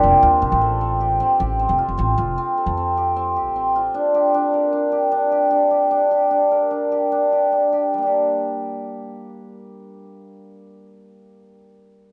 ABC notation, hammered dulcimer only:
X:1
M:5/4
L:1/8
Q:1/4=151
K:Gm
V:1 name="Hammered dulcimer"
C F C A C G C G C F | C F C A C G C G C F | D G D B D G D G D G | D G D B D G D G D G |
[G,B,DG]8- [G,B,DG]2- | [G,B,DG]8- [G,B,DG]2 |]